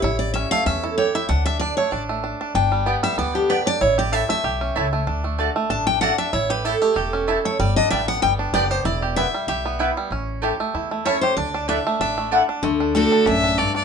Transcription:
0.02 upright bass A1, five-string banjo E4, steel-string acoustic guitar C#5
0.19 steel-string acoustic guitar D5
0.34 five-string banjo C#4, steel-string acoustic guitar E5
0.51 five-string banjo A3, steel-string acoustic guitar F5
0.66 upright bass E2, five-string banjo C#4, steel-string acoustic guitar E5
0.83 five-string banjo E4, steel-string acoustic guitar A4
0.98 five-string banjo G4, steel-string acoustic guitar C#5
1.15 five-string banjo E4, steel-string acoustic guitar E5
1.29 upright bass D2, five-string banjo D4, steel-string acoustic guitar F#5
1.46 five-string banjo D4, steel-string acoustic guitar E5
1.60 five-string banjo D4, steel-string acoustic guitar D5
1.77 five-string banjo A3, steel-string acoustic guitar C#5
1.92 upright bass A1, five-string banjo D4, steel-string acoustic guitar D5
2.09 five-string banjo A3
2.24 five-string banjo D4
2.41 five-string banjo D4
2.55 upright bass G1, five-string banjo D4, steel-string acoustic guitar G5
2.72 five-string banjo G3
2.86 mandolin B3 G4 D5 G5, five-string banjo B3
3.03 five-string banjo G3, steel-string acoustic guitar E5
3.17 upright bass D2, five-string banjo B3, steel-string acoustic guitar D5
3.35 five-string banjo D4, steel-string acoustic guitar G4
3.49 mandolin B3 G4 D5 G5, five-string banjo G4, steel-string acoustic guitar B4
3.66 five-string banjo D4, steel-string acoustic guitar D5
3.81 upright bass A1, five-string banjo E4, steel-string acoustic guitar C#5
3.98 five-string banjo G4, steel-string acoustic guitar D5
4.12 mandolin A3 E4 C#5 A5, five-string banjo E4, steel-string acoustic guitar E5
4.29 five-string banjo A3, steel-string acoustic guitar E5
4.44 upright bass B1, five-string banjo G4
4.61 five-string banjo C#4
4.76 upright bass C#2, mandolin A3 E4 C#5 A5, five-string banjo E4
4.93 five-string banjo A3
5.07 upright bass D2, five-string banjo D4
5.24 five-string banjo A3
5.38 mandolin A3 F#4 D5 A5, five-string banjo D4
5.56 five-string banjo A3
5.70 upright bass A1, five-string banjo D4, steel-string acoustic guitar A5
5.87 five-string banjo D4, steel-string acoustic guitar G5
6.01 mandolin A3 F#4 D5 A5, five-string banjo D4, steel-string acoustic guitar F#5
6.18 five-string banjo D4, steel-string acoustic guitar E5
6.33 upright bass A1, five-string banjo E4, steel-string acoustic guitar C#5
6.50 five-string banjo G4, steel-string acoustic guitar B4
6.65 mandolin A3 E4 C#5 A5, five-string banjo E4, steel-string acoustic guitar A4
6.82 five-string banjo A3, steel-string acoustic guitar G4
6.96 upright bass E1, five-string banjo G4, steel-string acoustic guitar A4
7.13 five-string banjo C#4
7.28 mandolin A3 E4 C#5 A5, five-string banjo E4
7.45 five-string banjo A3, steel-string acoustic guitar C#5
7.59 upright bass G1, five-string banjo G3, steel-string acoustic guitar D5
7.76 five-string banjo D4, steel-string acoustic guitar D#5
7.90 upright bass A1, five-string banjo G3, mandolin B3 G4 D5 G5, steel-string acoustic guitar E5
8.08 five-string banjo B3, steel-string acoustic guitar F#5
8.22 upright bass G1, five-string banjo G3, steel-string acoustic guitar G5
8.39 five-string banjo D4
8.53 upright bass F#1, mandolin B3 G4 D5 G5, five-string banjo B3, steel-string acoustic guitar D5
8.71 five-string banjo G4, steel-string acoustic guitar C5
8.85 upright bass E1, five-string banjo E4, steel-string acoustic guitar D5
9.02 five-string banjo G4
9.16 mandolin B3 E4 B4 G5, five-string banjo E4, steel-string acoustic guitar E5
9.34 five-string banjo G3
9.47 upright bass B1, five-string banjo G4, steel-string acoustic guitar E5
9.66 five-string banjo B3
9.79 mandolin B3 E4 B4 G5, five-string banjo E4
9.97 five-string banjo G3
10.10 upright bass A1, five-string banjo C#4
10.42 mandolin A3 E4 C#5 A5, five-string banjo G4
10.60 five-string banjo A3
10.74 upright bass E2, five-string banjo E4
10.91 five-string banjo A3
11.05 mandolin A3 E4 C#5 A5, five-string banjo C#4, steel-string acoustic guitar C#5
11.21 five-string banjo G4, steel-string acoustic guitar C5
11.36 upright bass D2, five-string banjo D4, steel-string acoustic guitar D5
11.54 five-string banjo D4
11.68 mandolin A3 E4 D5 F#5, five-string banjo D4, steel-string acoustic guitar E5
11.87 five-string banjo A3
12.00 upright bass A1, five-string banjo D4, steel-string acoustic guitar E5
12.18 five-string banjo A3
12.31 mandolin A3 E4 D5 F#5, five-string banjo D4
12.49 five-string banjo D4
12.63 upright bass D2, steel-string acoustic guitar D3, five-string banjo A3
12.80 five-string banjo D4
12.95 steel-string acoustic guitar D3 A3 D4 F#4, five-string banjo D4, fiddle A4
13.12 five-string banjo D4
13.26 upright bass A1, steel-string acoustic guitar F#2, five-string banjo D4, fiddle E5
13.44 five-string banjo D4
13.58 steel-string acoustic guitar G2, five-string banjo A3, fiddle D5
13.75 five-string banjo D4, fiddle D5

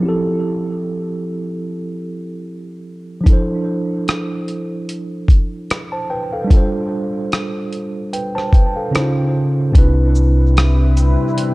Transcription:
Already playing: tine electric piano F3
0.00 tine electric piano C4 E4
0.06 tine electric piano G4 A4
3.21 tine electric piano F3 D4
3.26 tine electric piano E4 A4, kick, closed hi-hat
3.33 tine electric piano C5
4.08 cross-stick, closed hi-hat
4.48 closed hi-hat
4.89 closed hi-hat
5.28 kick, closed hi-hat
5.70 cross-stick, closed hi-hat
5.92 tine electric piano C5 A5
6.10 tine electric piano B4 G5
6.33 tine electric piano A4 F5
6.44 tine electric piano G3 D4
6.50 tine electric piano F4 A4, kick, closed hi-hat
6.57 tine electric piano C5
7.32 cross-stick, closed hi-hat
7.73 closed hi-hat
8.13 tine electric piano B4 G5, closed hi-hat
8.35 tine electric piano C5 A5, cross-stick
8.53 tine electric piano B4 G5, kick, closed hi-hat
8.76 tine electric piano A4 F5
8.91 tine electric piano C#3 C#4 D#4, closed hi-hat
8.96 tine electric piano E4 C5, cross-stick
9.02 tine electric piano F4
9.72 fingered electric bass C2, tine electric piano C3 C4 D4, ambient pad G3 C4 E4 B4, kick, closed hi-hat
9.77 tine electric piano E4 B4
10.15 shaker
10.57 cross-stick, closed hi-hat
10.97 closed hi-hat, shaker
11.38 closed hi-hat

